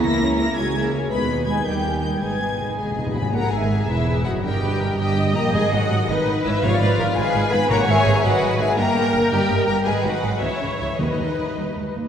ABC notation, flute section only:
X:1
M:6/8
L:1/8
Q:3/8=109
K:G#m
V:1 name="Flute section"
a2 a g z2 | B2 g =g2 g | g3 d2 g | f e2 B2 d |
d3 d2 =g | d d2 B2 c | =d3 ^e2 g | f e2 d2 e |
=g3 d2 g | d d2 c2 c | B4- B z |]